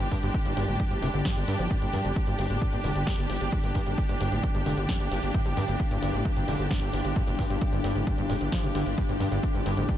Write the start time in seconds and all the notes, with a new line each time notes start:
Already playing: G2 D3 D4 G4 G5
0.00 G2, closed hi-hat
0.11 F2 G2, kick, open hi-hat
0.23 G1 G2, closed hi-hat
0.34 kick, closed hi-hat
0.45 G1 G2, closed hi-hat
0.57 G1 G2, open hi-hat
0.68 G1 A2, closed hi-hat
0.80 G2, kick, closed hi-hat
0.91 G1 G2, closed hi-hat
1.02 F1 C3, open hi-hat
1.14 G1 D3, closed hi-hat
1.25 G2, kick, snare, closed hi-hat
1.36 G1, closed hi-hat
1.48 G2, open hi-hat
1.59 G1 F3, closed hi-hat
1.71 G2 D3, kick, closed hi-hat
1.82 G1 G2, closed hi-hat
1.93 F2 G2, open hi-hat
2.05 G1 G2, closed hi-hat
2.16 kick, closed hi-hat
2.27 G1 G2, closed hi-hat
2.39 G1 G2, open hi-hat
2.50 G1 A2, closed hi-hat
2.61 G2, kick, closed hi-hat
2.73 G1 G2, closed hi-hat
2.84 F1 D3, open hi-hat
2.96 G1, closed hi-hat
3.07 F2, kick, snare, closed hi-hat
3.18 G1, closed hi-hat
3.30 G1, open hi-hat
3.41 G1, closed hi-hat
3.52 G2, kick, closed hi-hat
3.64 G1 G2, closed hi-hat
3.75 F2 G2, kick, open hi-hat
3.86 G1 G2, closed hi-hat
3.98 kick, closed hi-hat
4.09 G1 G2, closed hi-hat
4.21 G1 G2, open hi-hat
4.32 G1 A2, closed hi-hat
4.43 G2, kick, closed hi-hat
4.55 G1 G2, closed hi-hat
4.66 F1 D3, open hi-hat
4.77 G1, closed hi-hat
4.89 F2, kick, snare, closed hi-hat
5.00 G1, closed hi-hat
5.11 G1, open hi-hat
5.23 G1, closed hi-hat
5.34 G2, kick, closed hi-hat
5.45 G1 G2, closed hi-hat
5.57 F2 G2, open hi-hat
5.68 G1 G2, closed hi-hat
5.80 kick, closed hi-hat
5.91 G1 G2, closed hi-hat
6.02 G1 G2, open hi-hat
6.14 G1 A2, closed hi-hat
6.25 G2, kick, closed hi-hat
6.36 G1 G2, closed hi-hat
6.48 F1 D3, open hi-hat
6.59 G1, closed hi-hat
6.71 F2, kick, snare, closed hi-hat
6.82 G1, closed hi-hat
6.93 G1, open hi-hat
7.05 G1, closed hi-hat
7.16 G2, kick, closed hi-hat
7.27 G1 G2, closed hi-hat
7.39 F2 G2, kick, open hi-hat
7.50 G1 G2, closed hi-hat
7.61 kick, closed hi-hat
7.73 G1 G2, closed hi-hat
7.84 G1 G2, open hi-hat
7.95 G1 A2, closed hi-hat
8.07 G2, kick, closed hi-hat
8.18 G1 G2, closed hi-hat
8.29 F1 G2, open hi-hat
8.41 G1, closed hi-hat
8.52 F3, kick, snare, closed hi-hat
8.63 G1 A#2, closed hi-hat
8.75 G1 D3, open hi-hat
8.86 G1, closed hi-hat
8.98 G2, kick, closed hi-hat
9.09 G1 G2, closed hi-hat
9.20 F2 G2, open hi-hat
9.31 G1 G2, closed hi-hat
9.43 kick, closed hi-hat
9.54 G1 G2, closed hi-hat
9.66 G1 G2, open hi-hat
9.77 G1 A2, closed hi-hat
9.89 G2, kick, closed hi-hat